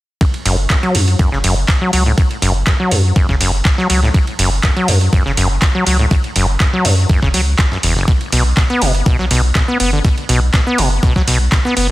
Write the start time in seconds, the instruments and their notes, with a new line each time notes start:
0.21 acid bass F#2, kick, ride
0.34 ride
0.45 sub bass F#1, acid bass F#2, open hi-hat, ride
0.70 acid bass F#2, kick, snare, clap, ride
0.83 acid bass F#3, ride
0.95 acid bass F#2, sub bass F#2, open hi-hat, ride
1.08 ride
1.19 acid bass F#2, kick, ride
1.32 sub bass F#1, acid bass C#3, snare
1.44 sub bass F#1, acid bass F#2, open hi-hat, ride
1.68 kick, snare, clap, ride
1.81 acid bass F#3
1.93 sub bass C#2, acid bass F#3, open hi-hat, ride
2.06 acid bass A2
2.18 acid bass F#2, kick, ride
2.31 ride
2.42 sub bass F#1, acid bass F#2, open hi-hat, ride
2.67 acid bass F#2, kick, snare, clap, ride
2.80 acid bass F#3
2.91 acid bass F#2, sub bass F#2, open hi-hat, ride
3.16 acid bass F#2, kick, ride
3.29 sub bass F#1, acid bass C#3, kick, snare
3.41 sub bass F#1, acid bass F#2, open hi-hat, ride
3.65 kick, snare, clap, ride
3.78 acid bass F#3, snare
3.90 sub bass C#2, acid bass F#3, open hi-hat, ride
4.03 acid bass A2, snare
4.14 acid bass F#2, kick, ride
4.27 ride
4.39 sub bass F#1, acid bass F#2, open hi-hat, ride
4.63 acid bass F#2, kick, snare, clap, ride
4.76 acid bass F#3, ride
4.88 sub bass F#2, acid bass F#2, open hi-hat, ride
5.01 ride
5.13 acid bass F#2, kick, ride
5.26 sub bass F#1, acid bass C#3, snare
5.37 sub bass F#1, acid bass F#2, open hi-hat, ride
5.62 kick, snare, clap, ride
5.75 acid bass F#3
5.86 sub bass C#2, acid bass F#3, open hi-hat, ride
5.99 acid bass A2
6.11 acid bass F#2, kick, ride
6.24 ride
6.36 sub bass F#1, acid bass F#2, open hi-hat, ride
6.60 acid bass F#2, kick, snare, clap, ride
6.73 acid bass F#3
6.85 sub bass F#2, acid bass F#2, open hi-hat, ride
7.09 acid bass F#2, kick, ride
7.22 sub bass F#1, acid bass C#3, kick, snare
7.34 sub bass C#2, acid bass F#3, open hi-hat, ride
7.59 kick, snare, clap, ride
7.72 acid bass F#2, snare
7.83 sub bass F#1, acid bass E2, open hi-hat, ride
7.96 acid bass F#1, snare
8.08 acid bass B2, kick, ride
8.21 ride
8.32 sub bass B1, acid bass B2, open hi-hat, ride
8.57 acid bass B2, kick, snare, clap, ride
8.70 acid bass B3, ride
8.82 sub bass F#1, acid bass B2, open hi-hat, ride
8.95 ride
9.06 acid bass B2, kick, ride
9.19 sub bass B1, acid bass F#3, snare
9.31 sub bass B1, acid bass B2, open hi-hat, ride
9.55 acid bass B2, kick, snare, clap, ride
9.68 acid bass B3
9.80 sub bass F#1, acid bass B3, open hi-hat, ride
9.93 acid bass D3
10.04 acid bass B2, kick, ride
10.18 ride
10.29 sub bass B1, acid bass B2, open hi-hat, ride
10.54 acid bass B2, kick, snare, clap, ride
10.67 acid bass B3
10.78 sub bass F#1, acid bass B2, open hi-hat, ride
11.03 acid bass B2, kick, ride
11.16 sub bass B1, acid bass F#3, kick, snare
11.27 sub bass B1, acid bass B2, open hi-hat, ride
11.52 acid bass B2, kick, snare, clap, ride
11.65 acid bass B3, snare
11.77 sub bass F#1, acid bass B3, open hi-hat, ride